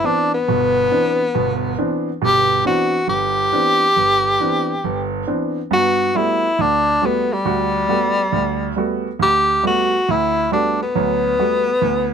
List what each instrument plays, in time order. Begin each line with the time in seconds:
0.04 grand piano E3 B3 C4 D4, tenor saxophone D4
0.34 tenor saxophone B3
0.48 grand piano G1 B2
0.91 grand piano E3 B3 C4 D4
1.35 grand piano G1 B2
1.78 grand piano E3 B3 C4 D4
2.22 grand piano G1 B2, tenor saxophone G4
2.64 grand piano E3 B3 C4 D4, tenor saxophone F#4
3.08 grand piano G1, tenor saxophone G4
3.52 grand piano E3 B3 C4 D4
3.96 grand piano G1
4.40 grand piano E3 B3 C4 D4
4.84 grand piano G1
5.27 grand piano E3 B3 C4 D4
5.71 grand piano G2 B3, tenor saxophone F#4
6.15 grand piano G3 A3 B3 F#4, tenor saxophone E4
6.59 grand piano D2, tenor saxophone D4
7.02 grand piano G3 A3 B3 F#4, tenor saxophone B3
7.33 tenor saxophone G3
7.45 grand piano D2 F#4
7.88 grand piano G3 A3 B3 F#4
8.33 grand piano D2
8.76 grand piano G3 A3 B3 F#4
9.19 grand piano D2, tenor saxophone G4
9.63 grand piano G3 A3 B3 F#4, tenor saxophone F#4
10.09 grand piano D2, tenor saxophone E4
10.52 grand piano G3 A3 B3 F#4, tenor saxophone D4
10.83 tenor saxophone B3
10.95 grand piano D2 F#3
11.39 grand piano G3 A3 B3 F#4
11.82 grand piano D2